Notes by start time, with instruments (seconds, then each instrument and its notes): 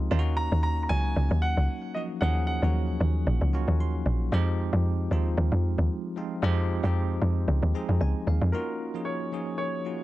Already playing: tine electric piano F3 G#3 C4 D#4 F4 G4 G#4
0.11 log drum bass D#2, tine electric piano A#3 C#4 D#4 F4
0.19 tine electric piano F#4
0.37 grand piano A#5
0.52 log drum bass D#2
0.63 grand piano A#5
0.83 grand piano A#5
0.89 log drum bass C#2, tine electric piano F#3 A#3 C#4 D#4 F#4, grand piano G#5
1.16 log drum bass C#2
1.31 log drum bass D#2
1.42 grand piano F#5
1.57 log drum bass C#2
1.94 tine electric piano F3 A#3 C#4 D#4 F#4, grand piano D#5
2.21 log drum bass D#2, tine electric piano F3 A#3 C#4 D#4 G#4, grand piano F#5
2.47 grand piano F#5
2.62 log drum bass D#2, tine electric piano F#3 A#3 C#4 D#4 F#4
3.00 log drum bass D#2
3.27 log drum bass A#1
3.41 log drum bass C#2
3.53 tine electric piano A#3 C#4 D#4 F4 F#4
3.68 log drum bass D#2
3.80 tine electric piano C6
4.06 log drum bass A#1
4.32 log drum bass F2, tine electric piano F3 G#3 C4 D#4 G4
4.73 log drum bass F2
5.11 log drum bass D#2, tine electric piano F3 G#3 C4 D#4 F4
5.37 log drum bass D#2
5.52 log drum bass F2
5.78 log drum bass D#2
6.16 tine electric piano F3 G#3 C4 D#4 F4
6.42 log drum bass F2, tine electric piano F3 G#3 C4 D#4 G4
6.83 log drum bass F2, tine electric piano F3 G#3 C4 D#4 G4
7.22 log drum bass F2
7.48 log drum bass C#2
7.63 log drum bass D#2
7.74 tine electric piano F3 G#3 C4 D#4 G#4 A#5
7.89 log drum bass F2
8.01 log drum bass C#2, tine electric piano G#5
8.27 log drum bass D#2, tine electric piano F5
8.41 log drum bass F2
8.52 tine electric piano A#3 C#4 D#4 F4 F#4, grand piano A#4
8.94 tine electric piano F3 A#3 C#4 D#4 G#4
9.05 grand piano C#5
9.32 tine electric piano F3 A#3 C#4 D#4 G#4
9.58 grand piano C#5
9.85 tine electric piano A#3 C#4 D#4 F4 F#4